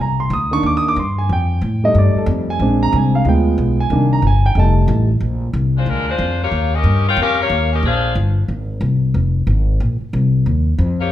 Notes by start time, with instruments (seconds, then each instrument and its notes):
Already playing: upright bass C2
0.01 grand piano A#5
0.20 grand piano C6
0.30 upright bass D2, grand piano D#6
0.51 grand piano D#3 A#3 D4 C#6
0.63 upright bass D#2, grand piano D6
0.77 grand piano D#6
0.88 grand piano D6
0.96 upright bass G2, grand piano C6
1.18 grand piano G#5
1.29 upright bass F2, grand piano G5
1.61 upright bass A2
1.84 grand piano G3 A3 D#4 D#5
1.95 upright bass G2, grand piano D5
2.15 grand piano A4, muted upright bass stroke
2.26 upright bass F2
2.50 grand piano G#5
2.59 upright bass A#1, grand piano G#3 C4 D4
2.83 grand piano A#5
2.92 upright bass C2, grand piano G#5
3.15 grand piano F5
3.25 upright bass D2, grand piano G#3 B3 F4 G5
3.58 upright bass B1
3.80 grand piano G#5
3.90 upright bass C2, grand piano D#3 A#3 D4
4.13 grand piano A#5
4.22 upright bass G1
4.27 grand piano G#5
4.46 grand piano G5
4.55 upright bass F1, grand piano G3 A3 D#4
4.59 grand piano A5
4.88 upright bass A1
5.20 upright bass A#1
5.53 upright bass C2
5.76 saxophone section G#3 D4 F4 C5
5.86 upright bass D2, saxophone section G#3 D4 F4 A#4
6.08 saxophone section G#3 D4 F4 C5
6.18 upright bass F2
6.42 saxophone section A#3 F4 G4 C#5
6.51 upright bass D#2
6.75 saxophone section C#4 G4 A#4 D#5
6.84 upright bass G2
7.07 saxophone section F4 A#4 C#5 G5
7.16 upright bass F2, saxophone section A#4
7.20 saxophone section C#4 G4 F5
7.41 saxophone section A#3 F4 G4 C#5
7.50 upright bass D#2
7.73 saxophone section C#4 G4 A#4 D#5
7.83 upright bass A#1, saxophone section D4 G#4 C5 F5
8.15 upright bass G1
8.48 upright bass G#1
8.81 upright bass C2
9.14 upright bass F1
9.47 upright bass G#1
9.80 upright bass A#1
10.01 muted upright bass stroke
10.13 upright bass C2
10.46 upright bass D#2
10.78 upright bass F2
10.99 saxophone section A#3 F4 G4 C#5